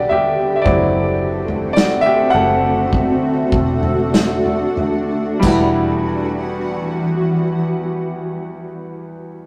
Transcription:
Already playing: D3 G3 B3 D4 F#4 G4 B4 D5
0.09 G4 E5, floor tom
0.56 E5
0.62 F#3 C4 D5
0.66 F#1 A3 C4 E4 F#4, kick, floor tom
1.48 floor tom
1.73 D5, snare, tambourine
1.79 F#4
2.01 E5
2.06 G4
2.30 F#5
2.34 F#1 A4, floor tom
2.93 D4, kick, floor tom
3.52 E1, kick
3.83 floor tom
4.14 snare, tambourine
4.46 floor tom
4.77 floor tom
5.40 E1 E2 E3 G3 B3 E4 F#4, kick, floor tom, tambourine, splash
5.47 F#4

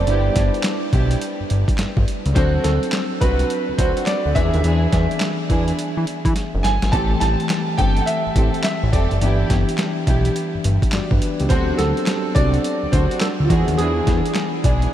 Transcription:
Already playing: D5
0.07 G1 G3 B3 D4 E4 G4 B4, closed hi-hat
0.36 G1, kick, snare, closed hi-hat
0.54 closed hi-hat
0.63 snare, clap, closed hi-hat
0.92 B1 B3 E4 G4, kick, closed hi-hat
1.11 closed hi-hat
1.22 closed hi-hat
1.40 G1
1.50 G1, closed hi-hat
1.68 kick, closed hi-hat
1.78 G1, snare, clap, closed hi-hat
1.97 G1, kick
2.08 closed hi-hat
2.26 C#2, closed hi-hat
2.35 D2 F#3 C4 D4 F#4 A4 C5, kick, closed hi-hat
2.64 D2 A4, snare, closed hi-hat
2.83 closed hi-hat
2.92 snare, clap, closed hi-hat
3.21 C2 C4 D4 F#4 B4, kick, closed hi-hat
3.39 closed hi-hat
3.50 closed hi-hat
3.69 D2
3.78 D2 C4 D4 F#4 C5, kick, closed hi-hat
3.97 closed hi-hat
4.06 D5, snare, clap, closed hi-hat
4.26 D2
4.35 E2 E3 B3 D4 E4 G#4 E5, kick, closed hi-hat
4.54 D#2, closed hi-hat
4.64 E2 D4 E4 G#4, closed hi-hat
4.93 E2, kick, snare, closed hi-hat
5.11 closed hi-hat
5.20 snare, clap, closed hi-hat
5.49 E2 D4 E4 G#4, kick, closed hi-hat
5.68 closed hi-hat
5.79 closed hi-hat
5.97 E3
6.07 closed hi-hat
6.25 E3, kick, closed hi-hat
6.36 snare, closed hi-hat
6.54 F#1
6.63 G1 G#5, snare, closed hi-hat
6.82 G#1, snare, closed hi-hat
6.92 A1 E3 A3 C4 G4 A4 A5, kick, closed hi-hat
7.20 A1 A5, snare, closed hi-hat
7.40 closed hi-hat
7.49 snare, clap, closed hi-hat
7.78 G1 C4 G4 A4 G5, kick, closed hi-hat
7.97 closed hi-hat
8.01 F#5
8.06 E5, closed hi-hat
8.26 A1
8.36 A1 C4 G4 A4, kick, closed hi-hat
8.54 closed hi-hat
8.63 E5, snare, clap, closed hi-hat
8.83 A1
8.92 F1 C4 G4 A4 D5, kick, closed hi-hat
9.11 F#1, closed hi-hat
9.21 G1 E3 B3 D4 E4 G4, closed hi-hat
9.50 G1, kick, snare, closed hi-hat
9.69 closed hi-hat
9.78 snare, clap, closed hi-hat
10.07 B1 B3 E4 G4, kick, closed hi-hat
10.25 closed hi-hat
10.36 closed hi-hat
10.54 G1
10.64 G1, closed hi-hat
10.82 kick, closed hi-hat
10.92 G1 F#4 D5, snare, clap, closed hi-hat
11.11 G1 D4 B4, kick
11.22 closed hi-hat
11.40 C#2 B3 G4, closed hi-hat
11.49 D2 F#3 C4 D4 F#4 A4 C5, kick, closed hi-hat
11.77 D2 A4, snare, closed hi-hat
11.97 closed hi-hat
12.06 snare, clap, closed hi-hat
12.35 C2 C4 D4 F#4 D5, kick, closed hi-hat
12.54 closed hi-hat
12.64 closed hi-hat
12.83 D2
12.92 D2 C4 D4 F#4 C5, kick, closed hi-hat
13.11 closed hi-hat
13.20 A4, snare, clap, closed hi-hat
13.40 D2 F4
13.49 E2 E3 B3 D4 E4 F#4 G#4, kick, closed hi-hat
13.68 D#2, closed hi-hat
13.77 E2 D4 E4 G#4, closed hi-hat
14.07 E2, kick, snare, closed hi-hat
14.26 closed hi-hat
14.35 snare, clap, closed hi-hat
14.64 B1 D4 E4 G#4 D5, kick, closed hi-hat
14.82 closed hi-hat

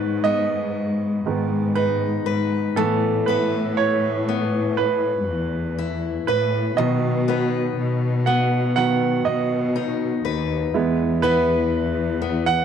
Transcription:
Already playing: G#2 D#3 G#3 B3 D#4 B4 C#5
0.24 B3 D#5
1.25 G#2 D#3 G#3 B3
1.75 D#4 B4
2.26 G#2 B4
2.76 A2 E3 A3 B3 A4
3.26 B3 E4 B4
3.77 C#5
4.28 B3
4.77 B4
5.28 E2
5.78 E4
6.27 A2 B4
6.77 B2 D#3 F#3 B3 D#5
7.28 B3 D#4 B4
7.77 B2
8.26 B3 F#5
8.76 D#3 F#3 B3 F#5
9.25 B2 D#5
9.76 D#4
10.25 D#2 B4
10.74 E2 G#3 B3 E4
11.22 B3 E4 B4
12.22 B3
12.47 F#5

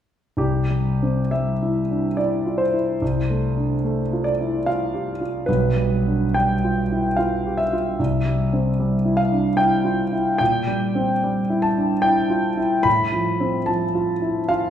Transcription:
0.37 C2 G4
0.70 G3
1.03 C4
1.31 G3 E5
1.62 E4
1.90 D4
2.17 E4 D5
2.46 F4
2.58 C5
2.73 E4
3.02 C2
3.30 A3
3.57 D4
3.84 A3
4.13 F4
4.24 D5
4.41 E4
4.66 F4 F5
4.94 G4
5.21 F4
5.46 B1 B4
5.76 G3
6.07 D4
6.34 G3 G5
6.64 F4
6.92 E4
7.16 F4 F5
7.46 G4
7.57 E5
7.73 F4
7.99 C2
8.26 G3
8.53 C4
8.79 G3
9.05 E4
9.17 F5
9.32 D4
9.57 E4 G5
9.85 F4
10.12 E4
10.38 A#2 G5
10.67 G3
10.95 C4
11.23 G3
11.50 E4
11.62 A5
11.77 D4
12.02 E4 G5
12.30 F4
12.57 E4
12.83 A2 B5
13.12 F3
13.40 C4
13.66 F3 A5
13.95 F4
14.22 E4
14.49 F4 F5

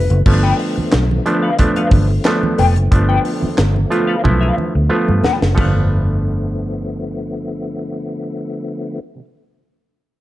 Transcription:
Already playing: D3 F3 A3 B3 B4
0.10 F#1, muted clean electric guitar stroke, closed hi-hat
0.26 G1 D3 F3 A3 B3 C#4, muted clean electric guitar stroke, kick, crash, muted conga, low conga
0.34 D4
0.43 A4 B4 G5, muted conga
0.59 muted clean electric guitar stroke, open hi-hat
0.76 muted clean electric guitar stroke, muted fingered electric bass stroke, high conga
0.91 B1, muted clean electric guitar stroke, snare, clap, closed hi-hat
1.09 muted clean electric guitar stroke, muted conga, high conga
1.26 F3 A3 B3 D4, closed hi-hat
1.42 A4 B4 F5
1.59 F3 A3 B3 D4, kick, closed hi-hat, muted conga, low conga
1.76 A4 B4 F5, closed hi-hat, muted conga
1.91 G1, muted clean electric guitar stroke, kick, open hi-hat, high conga
2.11 muted clean electric guitar stroke
2.25 F3 A3 B3 D4, muted clean electric guitar stroke, snare, clap, closed hi-hat
2.43 muted clean electric guitar stroke, muted conga, high conga
2.58 F1 A4 B4 G5, open hi-hat, low conga
2.76 F#1, muted clean electric guitar stroke, closed hi-hat
2.91 G1 F3 A3 B3 D4, muted clean electric guitar stroke, kick, closed hi-hat, muted conga, low conga
3.09 A4 B4 G5, muted conga
3.25 muted clean electric guitar stroke, open hi-hat
3.42 muted clean electric guitar stroke, muted fingered electric bass stroke, high conga
3.56 G1, muted clean electric guitar stroke, snare, clap, closed hi-hat, muted conga
3.74 muted clean electric guitar stroke, muted conga, high conga
3.90 F3 A3 B3 F4, closed hi-hat
4.07 A4 B4 F5
4.24 B1 F3 A3 B3 E4, muted clean electric guitar stroke, kick, low conga
4.41 A4 B4 F5, muted conga
4.57 muted clean electric guitar stroke, high conga
4.75 D2, muted clean electric guitar stroke
4.90 F3 A3 B3 F4, muted clean electric guitar stroke
5.08 G2, muted clean electric guitar stroke, high conga
5.23 A4 B4 G5, snare, low conga
5.42 F#1, snare
5.55 G1 D3 F3 A3 B3 A4 B4, kick, floor tom, splash, high conga
5.59 D4 F5

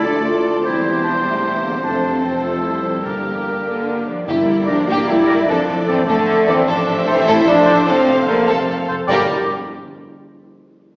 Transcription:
Already playing: D2 D3 F3 A3 D4 A4 D5
0.04 A2 A3 D4 A4 D5
0.25 A3 F4 A4
0.46 D4
0.65 E1 E2 C3 G3 C4 E4 G4 C5
0.85 G3
1.04 F3 D4 C5
1.23 C3 A3 G4
1.63 D3 G3 A#3
1.83 F1 F2 C3 F3 A3 D4 A4
2.04 A3
2.23 E3 C4 C5
2.43 C3 A3 F4 A4
2.64 G3 E4 C5
2.85 A3
3.04 G1 G2 D3 G3 A#3 D4 G4 A#4
3.26 G3
3.46 G4
3.66 D3 A#3 A#4
4.08 F3 G3 D4 D5
4.27 G2 D3 G3 A#3 E4 G4 A#4 D5 E5
4.39 D3
4.49 G2 A#3 G4
4.58 D4
4.66 G2 F3 D4 G4 A#4 D5
4.70 G4 D5
4.78 A#4
4.87 G2 A#3 G4 D5 G5
4.98 G5
5.07 G2 G3 E4 G4 D5 E5
5.18 A#4
5.27 G2 G4 A#4 D5
5.39 A#3
5.48 F2 F3 A3 D4 A4 D5
5.58 F3
5.67 F2 A3 A4
5.78 D4
5.87 F2 E3 C4 A4 C5 D5
5.98 D4
6.07 F2 D3 A3 A4 D5
6.18 A5
6.28 F2 A4 D5
6.38 A4
6.47 F2 E3 C4 D4 A4 C5 D5
6.58 A3
6.65 A1 A2 C3 F3 D4 A4 C5 D5 E5
6.78 E4
6.87 A1 A3 A4
6.98 C4
7.05 A1 E3 C4 A4 C5
7.17 C4
7.24 A1 A3 E4 A4 C5 E5
7.29 E4
7.38 A5
7.45 A1 F3 D4 A4 C5 D5
7.57 A4
7.66 A1 A4 C5
7.77 A3
7.85 F1 F2 F3 A3 C4 A4 C5 F5
7.96 C3
8.06 F1 A3 A4
8.16 C4
8.27 F1 D3 A#3 A4 A#4 C5
8.37 C4
8.47 F1 F3 C4 A4 C5
8.57 A5
8.67 F1 A4 C5
8.78 A4
8.88 F1 C4 A4 C5
8.99 A3
9.06 G2 D3 G3 A#3 G4 A#4 D5 G5
9.10 G1 G3 G4 A#4

